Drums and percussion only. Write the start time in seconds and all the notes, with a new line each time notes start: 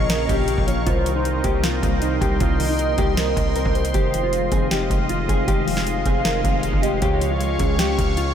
0.10 snare, closed hi-hat
0.29 kick, closed hi-hat
0.48 closed hi-hat
0.58 kick
0.68 closed hi-hat
0.87 kick, closed hi-hat
1.06 closed hi-hat
1.25 closed hi-hat
1.44 kick, closed hi-hat
1.64 snare, closed hi-hat
1.83 kick, closed hi-hat
2.02 closed hi-hat
2.21 kick, closed hi-hat
2.40 kick, closed hi-hat
2.60 open hi-hat
2.79 closed hi-hat
2.98 kick, closed hi-hat
3.17 snare, closed hi-hat
3.37 kick, closed hi-hat
3.56 closed hi-hat
3.65 kick
3.75 closed hi-hat
3.85 closed hi-hat
3.94 kick, closed hi-hat
4.14 closed hi-hat
4.33 closed hi-hat
4.52 kick, closed hi-hat
4.71 snare, closed hi-hat
4.90 kick, closed hi-hat
5.09 closed hi-hat
5.29 kick, closed hi-hat
5.48 kick, closed hi-hat
5.68 open hi-hat
5.77 snare
5.87 closed hi-hat
6.06 kick, closed hi-hat
6.25 snare, closed hi-hat
6.44 kick, closed hi-hat
6.63 closed hi-hat
6.73 kick
6.83 closed hi-hat
7.02 kick, closed hi-hat
7.21 closed hi-hat
7.41 closed hi-hat
7.59 kick, closed hi-hat
7.79 snare, closed hi-hat
7.98 kick, closed hi-hat
8.17 closed hi-hat